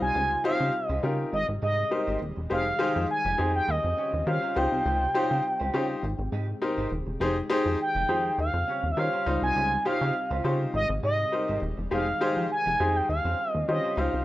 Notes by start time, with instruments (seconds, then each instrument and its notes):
Already playing: analog synth pad C3 G3 D#4 F4, grand piano G3 D#4 F4 C5
0.01 analog synth bass C2, analog synth lead G#5, muted clean electric guitar stroke
0.14 analog synth bass C#2, clean electric guitar F4 G4 C5
0.30 muted clean electric guitar stroke
0.44 grand piano D#4 F4 G4 C5, clean electric guitar F4 G4 C#5, analog synth lead F5
0.59 analog synth bass C#3, clean electric guitar F4 G4 C5
0.73 muted clean electric guitar stroke
0.87 analog synth bass C#2, clean electric guitar F4 G4 C5, analog synth lead D#5
1.03 analog synth bass C#3, grand piano D#4 F4 G4 A#4, clean electric guitar F4 G4 C#5
1.19 muted clean electric guitar stroke
1.33 analog synth bass G#1, analog synth pad G3 G#3, analog synth lead D#5, muted clean electric guitar stroke
1.48 analog synth bass G#1, muted clean electric guitar stroke
1.62 analog synth bass G#2, clean electric guitar D#4 G4 D#5, analog synth lead D#5
1.78 muted clean electric guitar stroke
1.91 grand piano D#4 G4 A#4 C5, muted clean electric guitar stroke
2.07 analog synth bass G#1, clean electric guitar D#4 G4 C5
2.21 analog synth bass D#1, muted clean electric guitar stroke
2.36 analog synth bass E1, muted clean electric guitar stroke
2.50 analog synth bass F1, analog synth pad D#3 G#3, clean electric guitar G#3 D#4 G4, grand piano D#4 G4 G#4 C5, analog synth lead F5
2.66 muted clean electric guitar stroke
2.79 clean electric guitar G#3 D#4 G#4, grand piano D#4 G4 G#4 C5
2.95 analog synth bass F2, clean electric guitar G#3 D#4 G4
3.09 analog synth lead G#5, muted clean electric guitar stroke
3.24 analog synth bass F1, clean electric guitar G#3 D#4 G4
3.38 analog synth bass F2, clean electric guitar G#3 D#4 G#4, grand piano D#4 G4 G#4 C5
3.54 analog synth lead G5, muted clean electric guitar stroke
3.67 analog synth bass D#2, analog synth pad C#3 G3 C4 F4, analog synth lead D#5, muted clean electric guitar stroke
3.83 analog synth bass F2, muted clean electric guitar stroke
3.97 clean electric guitar C#4 G4 C#5
4.13 analog synth bass D#2, muted clean electric guitar stroke
4.27 analog synth bass D#3, grand piano C#4 F4 G4 C5, analog synth lead F5, muted clean electric guitar stroke
4.42 clean electric guitar C#4 G4 C5
4.56 analog synth bass C#2, analog synth pad C3 D#4, grand piano D#4 F4 G4 C5, analog synth lead G5, muted clean electric guitar stroke
4.71 analog synth bass C2, muted clean electric guitar stroke
4.85 analog synth bass C#2, clean electric guitar F4 G4 C5
5.01 muted clean electric guitar stroke
5.14 grand piano D#4 F4 G4 C5, clean electric guitar F4 G4 C#5
5.30 analog synth bass C#3, clean electric guitar F4 G4 C5
5.44 muted clean electric guitar stroke
5.60 analog synth bass C#2, clean electric guitar F4 G4 C5
5.73 analog synth bass C#3, grand piano D#4 F4 G4 C5, clean electric guitar F4 G4 C#5
6.03 analog synth bass G#1, analog synth pad C3 G#3 G4, muted clean electric guitar stroke
6.18 analog synth bass G#1, muted clean electric guitar stroke
6.32 analog synth bass G#2, clean electric guitar D#4 G4 D#5
6.48 muted clean electric guitar stroke
6.62 grand piano D#4 G4 A#4 C5, muted clean electric guitar stroke
6.77 analog synth bass G#1, clean electric guitar D#4 G4 C5
6.91 analog synth bass D#1, muted clean electric guitar stroke
7.06 analog synth bass E1, muted clean electric guitar stroke
7.20 analog synth bass F1, analog synth pad D#3, clean electric guitar G#3 D#4 G4, grand piano D#4 G4 G#4 C5
7.36 muted clean electric guitar stroke
7.50 clean electric guitar G#3 D#4 G#4, grand piano D#4 G4 G#4 C5
7.65 analog synth bass F2, clean electric guitar G#3 D#4 G4
7.79 analog synth lead G5, muted clean electric guitar stroke
7.95 analog synth bass F1, clean electric guitar G#3 D#4 G4
8.09 analog synth bass F2, clean electric guitar G#3 D#4 G#4, grand piano D#4 G4 G#4 C5
8.38 analog synth bass D#2, analog synth pad C#3 G3 C4 F4, analog synth lead F5, muted clean electric guitar stroke
8.54 analog synth bass F2, muted clean electric guitar stroke
8.68 clean electric guitar C#4 G4 C#5
8.83 analog synth bass D#2, muted clean electric guitar stroke
8.92 analog synth lead E5
8.97 analog synth bass D#3, grand piano C#4 F4 G4 C5, analog synth lead F5, muted clean electric guitar stroke
9.13 clean electric guitar C#4 G4 C5
9.26 analog synth bass C#2, analog synth pad C3 D#4, grand piano G3 D#4 F4 C5, muted clean electric guitar stroke
9.42 analog synth bass C2, analog synth lead G#5, muted clean electric guitar stroke
9.56 analog synth bass C#2, clean electric guitar F4 G4 C5
9.72 muted clean electric guitar stroke
9.85 grand piano D#4 F4 G4 C5, clean electric guitar F4 G4 C#5, analog synth lead F5
10.01 analog synth bass C#3, clean electric guitar F4 G4 C5
10.15 muted clean electric guitar stroke
10.31 analog synth bass C#2, clean electric guitar F4 G4 C5
10.44 analog synth bass C#3, grand piano D#4 F4 G4 C5, clean electric guitar F4 G4 C#5
10.60 muted clean electric guitar stroke
10.74 analog synth bass G#1, analog synth pad G3 G#3, analog synth lead D#5, muted clean electric guitar stroke
10.89 analog synth bass G#1, muted clean electric guitar stroke
11.03 analog synth bass G#2, clean electric guitar D#4 G4 D#5, analog synth lead D#5
11.19 muted clean electric guitar stroke
11.32 grand piano D#4 G4 A#4 C5, muted clean electric guitar stroke
11.48 analog synth bass G#1, clean electric guitar D#4 G4 C5
11.62 analog synth bass D#1, muted clean electric guitar stroke
11.78 analog synth bass E1, muted clean electric guitar stroke
11.91 analog synth bass F1, analog synth pad D#3, clean electric guitar G#3 D#4 G4, grand piano D#4 G4 G#4 C5, analog synth lead F5
12.07 muted clean electric guitar stroke
12.21 clean electric guitar G#3 D#4 G#4, grand piano D#4 G4 G#4 C5
12.37 analog synth bass F2, clean electric guitar G#3 D#4 G4
12.51 analog synth lead G#5, muted clean electric guitar stroke
12.66 analog synth bass F1, clean electric guitar G#3 D#4 G4
12.80 analog synth bass F2, clean electric guitar G#3 D#4 G#4, grand piano D#4 G4 G#4 C5
12.96 analog synth lead G5, muted clean electric guitar stroke
13.09 analog synth bass D#2, analog synth pad C#3 G3 C4 F4, analog synth lead F5, muted clean electric guitar stroke
13.25 analog synth bass F2, clean electric guitar C#4 G4 C5
13.39 muted clean electric guitar stroke
13.52 analog synth bass D#2, analog synth lead D#5, muted clean electric guitar stroke
13.68 analog synth bass D#3, grand piano C#4 F4 G4 C5, analog synth lead D#5, muted clean electric guitar stroke
13.84 clean electric guitar C#4 G4 C5
13.97 analog synth bass C#2, analog synth pad C3 D#4, grand piano D#4 F4 G4 C5, analog synth lead F5
14.14 analog synth bass C2, muted clean electric guitar stroke